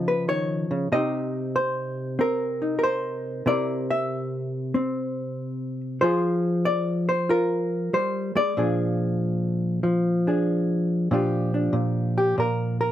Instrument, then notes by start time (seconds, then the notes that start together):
hollow-body jazz guitar
Already playing: C#3 F3 D#4 G#4
0.08 B4
0.28 D#3 C#5
0.71 C#3
0.92 C3 C4 D#4 G4 D#5
1.56 C5
2.19 C4 A#4
2.62 D#4
2.79 A#4
2.83 C5
3.46 C3 C4 E4 A#4 D5
3.90 E5
4.74 C4
6.01 F3 F4 G#4 C5
6.65 D5
7.09 C5
7.29 F4 A#4
7.93 G3 C5
8.35 G#3 D5
8.57 A#2 F3 D4 G#4
9.83 F3
10.27 D4 G#4
11.11 A#2 F3 D4 F4 G4
11.54 D4
11.73 A#2
12.18 G4
12.38 A#2 A#4
12.81 A#4